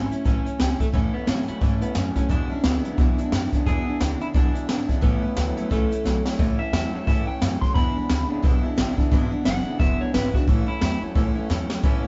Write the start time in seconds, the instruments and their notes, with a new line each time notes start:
Already playing: upright bass G#1, steel-string acoustic guitar E3 A3 C#4, clean electric guitar C#4
0.11 steel-string acoustic guitar A3 C#4 E4, muted upright bass stroke, closed hi-hat
0.24 upright bass A1, steel-string acoustic guitar A2 E3 A3 C#4 E4, clean electric guitar C#4, kick, closed hi-hat
0.45 steel-string acoustic guitar A3 C#4 E4, muted upright bass stroke, closed hi-hat
0.58 upright bass C#2, steel-string acoustic guitar E3 A3 C#4 E4, snare, closed hi-hat
0.79 clean electric guitar A3, steel-string acoustic guitar A3 C#4 E4, kick, closed hi-hat
0.92 upright bass E2, steel-string acoustic guitar A2 E3 A3 C#4 E4, clean electric guitar A2 E3 C#4, kick, closed hi-hat
1.13 steel-string acoustic guitar A3 C#4 E4, clean electric guitar B3, muted upright bass stroke
1.26 clean electric guitar A2 F#3 C#4, upright bass A2, steel-string acoustic guitar E3 A3 C#4 E4, snare, closed hi-hat
1.47 clean electric guitar A2 F#3 E4, steel-string acoustic guitar A3 C#4 E4, muted upright bass stroke, closed hi-hat
1.61 upright bass G#2, steel-string acoustic guitar A2 E3 A3 C#4 E4, clean electric guitar A2 E3 C#4, kick, closed hi-hat
1.81 steel-string acoustic guitar A3 C#4 E4, clean electric guitar B3, muted upright bass stroke, closed hi-hat
1.94 upright bass F#2, clean electric guitar A2 F#3 C#4, steel-string acoustic guitar E3 A3 C#4 E4, snare, closed hi-hat
2.15 clean electric guitar A2 F#3 C#4, steel-string acoustic guitar A3 C#4 E4, kick, closed hi-hat
2.29 steel-string acoustic guitar E2 B2 E3 G#3 D4 E4, clean electric guitar E2 B2 D4, upright bass E2, kick, closed hi-hat
2.49 steel-string acoustic guitar E3 G#3 D4 E4, clean electric guitar C#4, muted upright bass stroke
2.63 upright bass D2, clean electric guitar E2 C#3 B3, steel-string acoustic guitar E3 G#3 D4 E4, snare, closed hi-hat
2.83 clean electric guitar E2 C#3, steel-string acoustic guitar E3 G#3 D4 E4, closed hi-hat
2.97 upright bass B1, steel-string acoustic guitar E2 B2 E3 G#3 D4 E4, clean electric guitar E2 B2, kick, closed hi-hat
3.18 steel-string acoustic guitar E3 G#3 D4 E4, closed hi-hat
3.32 clean electric guitar E2 C#3, upright bass F#2, steel-string acoustic guitar E3 G#3 D4 E4, snare, closed hi-hat
3.52 clean electric guitar E2 C#3, steel-string acoustic guitar E3 G#3 D4 E4, muted upright bass stroke, kick, closed hi-hat
3.66 steel-string acoustic guitar E2 B2 E3 G#3 D4 E4, clean electric guitar E2 B2 G#4, upright bass E2, kick, closed hi-hat
3.86 steel-string acoustic guitar E3 G#3 D4 E4, muted upright bass stroke
4.00 upright bass D2, clean electric guitar E2 C#3, steel-string acoustic guitar E3 G#3 D4 E4, snare, closed hi-hat
4.20 clean electric guitar E2 C#3 E4, steel-string acoustic guitar E3 G#3 D4 E4, closed hi-hat
4.34 upright bass B1, steel-string acoustic guitar E2 B2 E3 G#3 D4 E4, clean electric guitar E2 B2 D4, kick, closed hi-hat
4.54 steel-string acoustic guitar E3 G#3 D4 E4, closed hi-hat
4.67 upright bass G#1, clean electric guitar E2 C#3, steel-string acoustic guitar E3 G#3 D4 E4, snare, closed hi-hat
4.88 clean electric guitar E2 C#3, steel-string acoustic guitar E3 G#3 D4 E4, kick, closed hi-hat
5.01 upright bass A1, steel-string acoustic guitar A2 E3 A3 C#4 E4, clean electric guitar A2 E3 B3, kick, closed hi-hat
5.21 steel-string acoustic guitar A3 C#4 E4, muted upright bass stroke
5.35 upright bass D2, clean electric guitar A2 F#3, steel-string acoustic guitar E3 A3 C#4 E4, snare, closed hi-hat
5.56 clean electric guitar A2 F#3, steel-string acoustic guitar A3 C#4 E4, closed hi-hat
5.70 upright bass C#2, steel-string acoustic guitar A2 E3 A3 C#4 E4, clean electric guitar A2 E3 A3, kick, closed hi-hat
5.90 steel-string acoustic guitar A3 C#4 E4, closed hi-hat
6.04 upright bass B1, clean electric guitar A2 F#3, steel-string acoustic guitar E3 A3 C#4 E4, snare
6.25 clean electric guitar A2 F#3, steel-string acoustic guitar A3 C#4 E4, snare
6.38 upright bass C#2, steel-string acoustic guitar A2 E3 A3 C#4 E4, clean electric guitar A2 E3, kick, open hi-hat
6.59 steel-string acoustic guitar A3 C#4 E4, clean electric guitar E5
6.72 upright bass E2, clean electric guitar A2 F#3, steel-string acoustic guitar E3 A3 C#4 E4, snare
6.93 clean electric guitar A2 F#3, steel-string acoustic guitar A3 C#4 E4, muted upright bass stroke
7.06 steel-string acoustic guitar A2 E3 A3 C#4 E4, clean electric guitar A2 E3 E5, upright bass A2, kick, open hi-hat
7.27 steel-string acoustic guitar A3 C#4 E4, clean electric guitar G5, muted upright bass stroke
7.41 upright bass F#2, clean electric guitar A2 F#3, steel-string acoustic guitar E3 A3 C#4 E4, snare, open hi-hat
7.61 clean electric guitar A2 F#3 C6, steel-string acoustic guitar A3 C#4 E4, muted upright bass stroke, kick
7.74 clean electric guitar E2 B2 B5, steel-string acoustic guitar E2 B2 E3 G#3 D4 E4, upright bass E2, kick, open hi-hat
7.95 steel-string acoustic guitar E3 G#3 D4 E4, muted upright bass stroke
8.09 upright bass D2, clean electric guitar E2 C#3, steel-string acoustic guitar E3 G#3 D4 E4, snare, open hi-hat
8.29 clean electric guitar E2 C#3, steel-string acoustic guitar E3 G#3 D4 E4, muted upright bass stroke
8.42 upright bass B1, steel-string acoustic guitar E2 B2 E3 G#3 D4 E4, clean electric guitar E2 B2, kick, open hi-hat
8.63 steel-string acoustic guitar E3 G#3 D4 E4
8.77 upright bass A1, clean electric guitar E2 C#3, steel-string acoustic guitar E3 G#3 D4 E4, snare, open hi-hat
8.97 clean electric guitar E2 C#3, steel-string acoustic guitar E3 G#3 D4 E4, muted upright bass stroke, kick
9.11 upright bass G#1, steel-string acoustic guitar E2 B2 E3 G#3 D4 E4, clean electric guitar E2 B2, kick, open hi-hat
9.31 steel-string acoustic guitar E3 G#3 D4 E4, muted upright bass stroke
9.44 upright bass F#1, clean electric guitar E2 C#3 F#5, steel-string acoustic guitar E3 G#3 D4 E4, snare, open hi-hat
9.65 clean electric guitar E2 C#3, steel-string acoustic guitar E3 G#3 D4 E4, muted upright bass stroke
9.79 upright bass E1, steel-string acoustic guitar E2 B2 E3 G#3 D4 E4, clean electric guitar E2 B2 E5, kick, open hi-hat
10.00 steel-string acoustic guitar E3 G#3 D4 E4, clean electric guitar C#5, muted upright bass stroke
10.13 upright bass G#1, clean electric guitar E2 C#3 B4, steel-string acoustic guitar E3 G#3 D4 E4, snare, open hi-hat
10.34 clean electric guitar E2 C#3 F#4, steel-string acoustic guitar E3 G#3 D4 E4, muted upright bass stroke, kick
10.47 upright bass A1, clean electric guitar A2 E3 E4, steel-string acoustic guitar A2 E3 A3 C#4 E4, kick, open hi-hat
10.67 steel-string acoustic guitar A3 C#4 E4, clean electric guitar E4, muted upright bass stroke
10.80 upright bass E2, clean electric guitar A2 F#3, steel-string acoustic guitar E3 A3 C#4 E4, snare, open hi-hat
11.01 clean electric guitar A2 F#3, steel-string acoustic guitar A3 C#4 E4, muted upright bass stroke
11.15 upright bass C#2, clean electric guitar A2 E3, steel-string acoustic guitar A2 E3 A3 C#4 E4, kick, open hi-hat
11.35 steel-string acoustic guitar A3 C#4 E4
11.48 upright bass E2, clean electric guitar A2 F#3, steel-string acoustic guitar E3 A3 C#4 E4, snare
11.69 clean electric guitar A2 F#3, steel-string acoustic guitar A3 C#4 E4, muted upright bass stroke, snare
11.83 steel-string acoustic guitar A2 E3 A3 C#4 E4, clean electric guitar A2 E3, upright bass A2, kick, open hi-hat
12.03 steel-string acoustic guitar E4, muted upright bass stroke